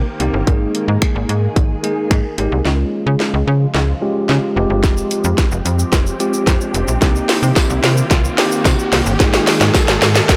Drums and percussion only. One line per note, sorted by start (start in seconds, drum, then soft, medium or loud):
0.20 closed hi-hat medium
0.47 kick loud
0.47 closed hi-hat medium
0.75 closed hi-hat medium
1.02 finger snap loud
1.02 kick loud
1.02 closed hi-hat medium
1.29 closed hi-hat medium
1.56 kick loud
1.56 closed hi-hat medium
1.84 closed hi-hat soft
2.11 finger snap loud
2.11 kick loud
2.11 closed hi-hat medium
2.38 closed hi-hat medium
2.65 snare soft
3.20 snare medium
3.75 snare medium
4.29 snare medium
4.84 kick loud
4.84 snare medium
4.84 closed hi-hat medium
4.84 shaker medium
4.97 shaker medium
5.11 closed hi-hat medium
5.11 shaker medium
5.24 shaker medium
5.38 kick loud
5.38 snare medium
5.38 closed hi-hat medium
5.38 shaker medium
5.52 shaker medium
5.66 closed hi-hat soft
5.66 shaker medium
5.79 shaker medium
5.93 kick loud
5.93 snare medium
5.93 closed hi-hat medium
5.93 shaker medium
6.06 shaker medium
6.20 closed hi-hat medium
6.20 shaker medium
6.34 shaker medium
6.47 kick loud
6.47 snare medium
6.47 closed hi-hat medium
6.47 shaker medium
6.61 shaker medium
6.75 closed hi-hat medium
6.75 shaker medium
6.88 shaker medium
7.02 kick loud
7.02 snare medium
7.02 closed hi-hat medium
7.02 shaker medium
7.16 shaker medium
7.29 snare medium
7.29 open hi-hat medium
7.29 shaker medium
7.43 shaker medium
7.56 kick loud
7.56 snare medium
7.56 closed hi-hat medium
7.56 tambourine medium
7.56 shaker medium
7.70 shaker medium
7.84 snare medium
7.84 open hi-hat medium
7.84 shaker medium
7.97 shaker medium
8.11 kick loud
8.11 snare medium
8.11 closed hi-hat medium
8.11 shaker medium
8.25 shaker medium
8.38 snare loud
8.38 open hi-hat medium
8.38 shaker medium
8.52 shaker medium
8.65 kick loud
8.65 snare medium
8.65 closed hi-hat medium
8.65 tambourine medium
8.65 shaker medium
8.79 shaker medium
8.93 snare medium
8.93 open hi-hat medium
8.93 shaker medium
9.06 shaker medium
9.20 kick loud
9.20 snare medium
9.20 closed hi-hat medium
9.20 shaker medium
9.34 snare loud
9.34 shaker medium
9.47 snare loud
9.47 open hi-hat medium
9.47 shaker medium
9.61 snare loud
9.61 shaker medium
9.75 kick loud
9.75 snare loud
9.75 closed hi-hat medium
9.75 tambourine medium
9.75 shaker medium
9.88 snare loud
9.88 shaker medium
10.02 snare loud
10.02 open hi-hat medium
10.02 shaker medium
10.15 snare loud
10.15 shaker medium
10.29 kick loud
10.29 snare loud
10.29 closed hi-hat medium
10.29 shaker medium